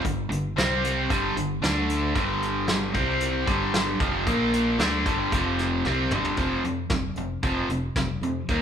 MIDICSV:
0, 0, Header, 1, 4, 480
1, 0, Start_track
1, 0, Tempo, 527704
1, 42, Time_signature, 4, 2, 24, 8
1, 7839, End_track
2, 0, Start_track
2, 0, Title_t, "Overdriven electric guitar"
2, 0, Program_c, 0, 29
2, 36, Note_on_c, 0, 43, 67
2, 40, Note_on_c, 0, 50, 65
2, 231, Note_off_c, 0, 43, 0
2, 233, Note_off_c, 0, 50, 0
2, 265, Note_on_c, 0, 43, 66
2, 275, Note_on_c, 0, 50, 65
2, 466, Note_off_c, 0, 43, 0
2, 471, Note_off_c, 0, 50, 0
2, 510, Note_on_c, 0, 48, 77
2, 515, Note_on_c, 0, 55, 94
2, 522, Note_on_c, 0, 60, 112
2, 990, Note_off_c, 0, 48, 0
2, 993, Note_off_c, 0, 55, 0
2, 995, Note_on_c, 0, 43, 98
2, 996, Note_off_c, 0, 60, 0
2, 1002, Note_on_c, 0, 50, 107
2, 1010, Note_on_c, 0, 55, 97
2, 1232, Note_off_c, 0, 43, 0
2, 1232, Note_off_c, 0, 50, 0
2, 1240, Note_off_c, 0, 55, 0
2, 1242, Note_on_c, 0, 50, 80
2, 1243, Note_on_c, 0, 43, 61
2, 1435, Note_off_c, 0, 50, 0
2, 1436, Note_off_c, 0, 43, 0
2, 1472, Note_on_c, 0, 50, 93
2, 1477, Note_on_c, 0, 57, 85
2, 1478, Note_on_c, 0, 62, 94
2, 1951, Note_off_c, 0, 50, 0
2, 1954, Note_off_c, 0, 57, 0
2, 1954, Note_off_c, 0, 62, 0
2, 1957, Note_on_c, 0, 43, 91
2, 1965, Note_on_c, 0, 50, 102
2, 1970, Note_on_c, 0, 55, 100
2, 2666, Note_off_c, 0, 50, 0
2, 2666, Note_off_c, 0, 55, 0
2, 2670, Note_on_c, 0, 48, 77
2, 2674, Note_off_c, 0, 43, 0
2, 2677, Note_on_c, 0, 55, 78
2, 2682, Note_on_c, 0, 60, 90
2, 3150, Note_off_c, 0, 48, 0
2, 3154, Note_off_c, 0, 55, 0
2, 3156, Note_off_c, 0, 60, 0
2, 3156, Note_on_c, 0, 43, 91
2, 3159, Note_on_c, 0, 50, 99
2, 3169, Note_on_c, 0, 55, 102
2, 3633, Note_off_c, 0, 43, 0
2, 3634, Note_off_c, 0, 50, 0
2, 3639, Note_on_c, 0, 41, 84
2, 3640, Note_off_c, 0, 55, 0
2, 3647, Note_on_c, 0, 48, 85
2, 3651, Note_on_c, 0, 53, 99
2, 3874, Note_off_c, 0, 41, 0
2, 3878, Note_off_c, 0, 48, 0
2, 3881, Note_off_c, 0, 53, 0
2, 3886, Note_on_c, 0, 46, 91
2, 3897, Note_on_c, 0, 53, 108
2, 3899, Note_on_c, 0, 58, 106
2, 4351, Note_off_c, 0, 46, 0
2, 4355, Note_on_c, 0, 50, 94
2, 4360, Note_off_c, 0, 53, 0
2, 4363, Note_on_c, 0, 57, 94
2, 4364, Note_off_c, 0, 58, 0
2, 4371, Note_on_c, 0, 62, 99
2, 4592, Note_off_c, 0, 50, 0
2, 4596, Note_off_c, 0, 57, 0
2, 4598, Note_on_c, 0, 43, 78
2, 4600, Note_off_c, 0, 62, 0
2, 4603, Note_on_c, 0, 55, 75
2, 4605, Note_on_c, 0, 50, 80
2, 4834, Note_off_c, 0, 43, 0
2, 4836, Note_off_c, 0, 55, 0
2, 4837, Note_off_c, 0, 50, 0
2, 4841, Note_on_c, 0, 41, 94
2, 4850, Note_on_c, 0, 48, 97
2, 4857, Note_on_c, 0, 53, 94
2, 5315, Note_off_c, 0, 41, 0
2, 5320, Note_off_c, 0, 48, 0
2, 5323, Note_off_c, 0, 53, 0
2, 5334, Note_on_c, 0, 48, 80
2, 5338, Note_on_c, 0, 55, 95
2, 5338, Note_on_c, 0, 60, 106
2, 5561, Note_off_c, 0, 48, 0
2, 5563, Note_off_c, 0, 55, 0
2, 5563, Note_off_c, 0, 60, 0
2, 5571, Note_on_c, 0, 43, 86
2, 5581, Note_on_c, 0, 50, 80
2, 5585, Note_on_c, 0, 55, 86
2, 5792, Note_off_c, 0, 43, 0
2, 5796, Note_on_c, 0, 41, 89
2, 5799, Note_off_c, 0, 50, 0
2, 5802, Note_on_c, 0, 48, 78
2, 5805, Note_off_c, 0, 55, 0
2, 5808, Note_on_c, 0, 53, 88
2, 6025, Note_off_c, 0, 41, 0
2, 6028, Note_off_c, 0, 48, 0
2, 6031, Note_off_c, 0, 53, 0
2, 6047, Note_on_c, 0, 41, 61
2, 6056, Note_on_c, 0, 48, 69
2, 6261, Note_off_c, 0, 41, 0
2, 6265, Note_off_c, 0, 48, 0
2, 6291, Note_on_c, 0, 41, 68
2, 6293, Note_on_c, 0, 48, 69
2, 6503, Note_off_c, 0, 41, 0
2, 6504, Note_off_c, 0, 48, 0
2, 6528, Note_on_c, 0, 48, 62
2, 6529, Note_on_c, 0, 41, 61
2, 6741, Note_off_c, 0, 41, 0
2, 6741, Note_off_c, 0, 48, 0
2, 6757, Note_on_c, 0, 41, 83
2, 6767, Note_on_c, 0, 48, 74
2, 6770, Note_on_c, 0, 53, 88
2, 6985, Note_off_c, 0, 41, 0
2, 6990, Note_off_c, 0, 48, 0
2, 6991, Note_off_c, 0, 53, 0
2, 7011, Note_on_c, 0, 41, 65
2, 7012, Note_on_c, 0, 48, 68
2, 7223, Note_off_c, 0, 41, 0
2, 7223, Note_off_c, 0, 48, 0
2, 7251, Note_on_c, 0, 41, 70
2, 7258, Note_on_c, 0, 48, 67
2, 7462, Note_off_c, 0, 41, 0
2, 7465, Note_off_c, 0, 48, 0
2, 7489, Note_on_c, 0, 41, 62
2, 7493, Note_on_c, 0, 48, 71
2, 7701, Note_off_c, 0, 41, 0
2, 7703, Note_off_c, 0, 48, 0
2, 7732, Note_on_c, 0, 51, 82
2, 7739, Note_on_c, 0, 55, 87
2, 7747, Note_on_c, 0, 58, 95
2, 7839, Note_off_c, 0, 51, 0
2, 7839, Note_off_c, 0, 55, 0
2, 7839, Note_off_c, 0, 58, 0
2, 7839, End_track
3, 0, Start_track
3, 0, Title_t, "Fingered electric bass"
3, 0, Program_c, 1, 33
3, 45, Note_on_c, 1, 31, 81
3, 267, Note_off_c, 1, 31, 0
3, 293, Note_on_c, 1, 31, 76
3, 511, Note_off_c, 1, 31, 0
3, 527, Note_on_c, 1, 36, 97
3, 972, Note_off_c, 1, 36, 0
3, 1002, Note_on_c, 1, 31, 85
3, 1226, Note_off_c, 1, 31, 0
3, 1245, Note_on_c, 1, 31, 68
3, 1468, Note_off_c, 1, 31, 0
3, 1483, Note_on_c, 1, 38, 96
3, 1930, Note_off_c, 1, 38, 0
3, 1959, Note_on_c, 1, 31, 92
3, 2646, Note_off_c, 1, 31, 0
3, 2681, Note_on_c, 1, 36, 88
3, 3129, Note_off_c, 1, 36, 0
3, 3160, Note_on_c, 1, 31, 82
3, 3608, Note_off_c, 1, 31, 0
3, 3640, Note_on_c, 1, 29, 77
3, 3865, Note_off_c, 1, 29, 0
3, 3883, Note_on_c, 1, 34, 94
3, 4330, Note_off_c, 1, 34, 0
3, 4353, Note_on_c, 1, 38, 92
3, 4581, Note_off_c, 1, 38, 0
3, 4602, Note_on_c, 1, 31, 81
3, 4826, Note_off_c, 1, 31, 0
3, 4842, Note_on_c, 1, 29, 86
3, 5289, Note_off_c, 1, 29, 0
3, 5327, Note_on_c, 1, 36, 79
3, 5549, Note_off_c, 1, 36, 0
3, 5571, Note_on_c, 1, 31, 81
3, 5791, Note_off_c, 1, 31, 0
3, 5799, Note_on_c, 1, 29, 87
3, 5978, Note_off_c, 1, 29, 0
3, 6043, Note_on_c, 1, 41, 73
3, 6221, Note_off_c, 1, 41, 0
3, 6275, Note_on_c, 1, 29, 89
3, 6455, Note_off_c, 1, 29, 0
3, 6518, Note_on_c, 1, 29, 80
3, 6697, Note_off_c, 1, 29, 0
3, 6760, Note_on_c, 1, 29, 84
3, 6938, Note_off_c, 1, 29, 0
3, 6998, Note_on_c, 1, 29, 76
3, 7177, Note_off_c, 1, 29, 0
3, 7237, Note_on_c, 1, 29, 77
3, 7416, Note_off_c, 1, 29, 0
3, 7472, Note_on_c, 1, 41, 66
3, 7653, Note_off_c, 1, 41, 0
3, 7721, Note_on_c, 1, 39, 93
3, 7839, Note_off_c, 1, 39, 0
3, 7839, End_track
4, 0, Start_track
4, 0, Title_t, "Drums"
4, 44, Note_on_c, 9, 36, 87
4, 45, Note_on_c, 9, 42, 78
4, 135, Note_off_c, 9, 36, 0
4, 136, Note_off_c, 9, 42, 0
4, 286, Note_on_c, 9, 42, 68
4, 377, Note_off_c, 9, 42, 0
4, 529, Note_on_c, 9, 42, 94
4, 531, Note_on_c, 9, 38, 118
4, 620, Note_off_c, 9, 42, 0
4, 622, Note_off_c, 9, 38, 0
4, 767, Note_on_c, 9, 42, 65
4, 858, Note_off_c, 9, 42, 0
4, 1004, Note_on_c, 9, 36, 91
4, 1005, Note_on_c, 9, 42, 83
4, 1095, Note_off_c, 9, 36, 0
4, 1096, Note_off_c, 9, 42, 0
4, 1246, Note_on_c, 9, 42, 62
4, 1337, Note_off_c, 9, 42, 0
4, 1487, Note_on_c, 9, 42, 82
4, 1488, Note_on_c, 9, 38, 113
4, 1578, Note_off_c, 9, 42, 0
4, 1579, Note_off_c, 9, 38, 0
4, 1724, Note_on_c, 9, 42, 65
4, 1815, Note_off_c, 9, 42, 0
4, 1959, Note_on_c, 9, 42, 73
4, 1960, Note_on_c, 9, 36, 89
4, 2050, Note_off_c, 9, 42, 0
4, 2051, Note_off_c, 9, 36, 0
4, 2205, Note_on_c, 9, 42, 61
4, 2296, Note_off_c, 9, 42, 0
4, 2435, Note_on_c, 9, 42, 83
4, 2437, Note_on_c, 9, 38, 113
4, 2526, Note_off_c, 9, 42, 0
4, 2528, Note_off_c, 9, 38, 0
4, 2677, Note_on_c, 9, 42, 59
4, 2680, Note_on_c, 9, 36, 91
4, 2768, Note_off_c, 9, 42, 0
4, 2771, Note_off_c, 9, 36, 0
4, 2915, Note_on_c, 9, 42, 86
4, 3006, Note_off_c, 9, 42, 0
4, 3160, Note_on_c, 9, 42, 64
4, 3161, Note_on_c, 9, 36, 101
4, 3251, Note_off_c, 9, 42, 0
4, 3252, Note_off_c, 9, 36, 0
4, 3400, Note_on_c, 9, 42, 79
4, 3401, Note_on_c, 9, 38, 101
4, 3491, Note_off_c, 9, 42, 0
4, 3492, Note_off_c, 9, 38, 0
4, 3640, Note_on_c, 9, 36, 100
4, 3642, Note_on_c, 9, 42, 65
4, 3731, Note_off_c, 9, 36, 0
4, 3733, Note_off_c, 9, 42, 0
4, 3882, Note_on_c, 9, 36, 89
4, 3883, Note_on_c, 9, 42, 76
4, 3973, Note_off_c, 9, 36, 0
4, 3974, Note_off_c, 9, 42, 0
4, 4124, Note_on_c, 9, 42, 67
4, 4215, Note_off_c, 9, 42, 0
4, 4361, Note_on_c, 9, 42, 86
4, 4363, Note_on_c, 9, 38, 106
4, 4452, Note_off_c, 9, 42, 0
4, 4454, Note_off_c, 9, 38, 0
4, 4602, Note_on_c, 9, 36, 91
4, 4603, Note_on_c, 9, 42, 69
4, 4693, Note_off_c, 9, 36, 0
4, 4694, Note_off_c, 9, 42, 0
4, 4842, Note_on_c, 9, 36, 91
4, 4842, Note_on_c, 9, 42, 88
4, 4933, Note_off_c, 9, 36, 0
4, 4933, Note_off_c, 9, 42, 0
4, 5083, Note_on_c, 9, 42, 63
4, 5085, Note_on_c, 9, 38, 33
4, 5174, Note_off_c, 9, 42, 0
4, 5176, Note_off_c, 9, 38, 0
4, 5320, Note_on_c, 9, 38, 58
4, 5411, Note_off_c, 9, 38, 0
4, 5558, Note_on_c, 9, 45, 87
4, 5649, Note_off_c, 9, 45, 0
4, 5681, Note_on_c, 9, 43, 73
4, 5772, Note_off_c, 9, 43, 0
4, 5793, Note_on_c, 9, 42, 64
4, 5799, Note_on_c, 9, 36, 91
4, 5883, Note_off_c, 9, 42, 0
4, 5890, Note_off_c, 9, 36, 0
4, 6044, Note_on_c, 9, 42, 50
4, 6135, Note_off_c, 9, 42, 0
4, 6272, Note_on_c, 9, 42, 73
4, 6273, Note_on_c, 9, 38, 100
4, 6279, Note_on_c, 9, 36, 107
4, 6363, Note_off_c, 9, 42, 0
4, 6364, Note_off_c, 9, 38, 0
4, 6370, Note_off_c, 9, 36, 0
4, 6510, Note_on_c, 9, 42, 54
4, 6601, Note_off_c, 9, 42, 0
4, 6756, Note_on_c, 9, 42, 67
4, 6759, Note_on_c, 9, 36, 96
4, 6846, Note_off_c, 9, 42, 0
4, 6850, Note_off_c, 9, 36, 0
4, 6999, Note_on_c, 9, 42, 56
4, 7090, Note_off_c, 9, 42, 0
4, 7239, Note_on_c, 9, 36, 93
4, 7239, Note_on_c, 9, 42, 70
4, 7240, Note_on_c, 9, 38, 102
4, 7329, Note_off_c, 9, 42, 0
4, 7330, Note_off_c, 9, 36, 0
4, 7331, Note_off_c, 9, 38, 0
4, 7484, Note_on_c, 9, 42, 55
4, 7575, Note_off_c, 9, 42, 0
4, 7718, Note_on_c, 9, 42, 75
4, 7721, Note_on_c, 9, 36, 99
4, 7809, Note_off_c, 9, 42, 0
4, 7812, Note_off_c, 9, 36, 0
4, 7839, End_track
0, 0, End_of_file